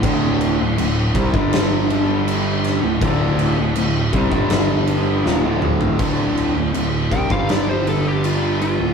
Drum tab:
CC |x-x-x-x-x-x-x-x-|x-x-x-x-x-x-----|x-x-x-x-x-x-x-x-|
SD |--------o-----o-|--------o---o---|--------o-------|
T2 |----------------|--------------o-|----------------|
FT |----------------|---------------o|----------------|
BD |o-----oo--------|o-----oo--------|o-----oo--------|